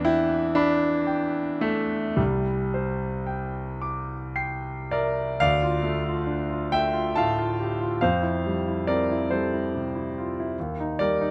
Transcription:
grand piano
Already playing: E2 D4 B4
0.05 E4 G5
0.55 D4 B5
1.07 G5
1.61 A3 E5
2.16 C2 G3
2.74 C5
3.27 G5
3.82 D6
4.36 G5 C7
4.91 A#4 D5 E5
5.40 D2 D5 F5
5.63 F4
5.83 A3
6.06 F4
6.27 D4
6.50 F4
6.72 A3 E5 G5
6.94 F4
7.15 A2 F5 A5
7.39 F4
7.60 G4
7.80 F4
8.01 F2 C5 F5
8.23 E4
8.46 G3
8.68 E4
8.87 C4 A#4 D5
9.11 E4
9.31 G3 A4 C5
9.53 E4
9.75 C3
9.95 E4
10.18 F4
10.40 E4
10.59 D#2
10.80 D#4
10.99 G3 A#4 D5
11.21 D#4

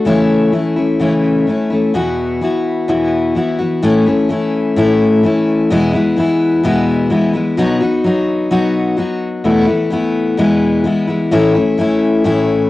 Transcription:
steel-string acoustic guitar
0.05 C#3 E3 A3 C#4 E4
0.52 E3 A3 C#4 E4
0.76 A3 C#4 E4
1.00 C#3 E3 A3 C#4 E4
1.47 E3 A3 C#4 E4
1.70 A3 C#4 E4
1.94 E2 B2 E3 B3 E4 F#4
2.41 E3 B3 E4 F#4
2.88 E2 B2 E3 B3 E4 F#4
3.35 E3 B3 E4 F#4
3.58 E3 B3 E4 F#4
3.82 A2 E3 A3 C#4 E4
4.06 A3 C#4 E4
4.29 E3 A3 C#4 E4
4.76 A2 E3 A3 C#4 E4
5.23 E3 A3 C#4 E4
5.70 E2 B2 E3 G#3 B3 E4
5.93 E3 G#3 B3 E4
6.16 E3 G#3 B3 E4
6.64 E2 B2 E3 G#3 B3 E4
7.10 E3 G#3 B3 E4
7.33 E3 G#3 B3 E4
7.57 B2 F#3 B3 D#4 F#4
7.80 B3 D#4 F#4
8.04 F#3 B3 D#4 F#4
8.51 B2 F#3 B3 D#4 F#4
8.97 F#3 B3 D#4 F#4
9.44 E2 B2 E3 A3 B3 E4
9.67 E3 A3 B3 E4
9.90 E3 A3 B3 E4
10.37 E2 B2 E3 G#3 B3 E4
10.84 E3 G#3 B3 E4
11.07 E3 G#3 B3 E4
11.31 A2 E3 A3 C#4 E4
11.54 A3 C#4 E4
11.77 E3 A3 C#4 E4
12.24 A2 E3 A3 C#4 E4

